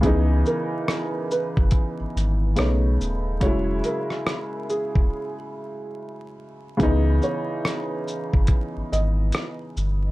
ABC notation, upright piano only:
X:1
M:4/4
L:1/8
Q:"Swing 16ths" 1/4=71
K:C#dor
V:1 name="Upright piano" clef=bass
[C,E,B,D]6 [C,=A,B,D]2 | [C,F,G,E]8 | [C,E,B,D]8 |]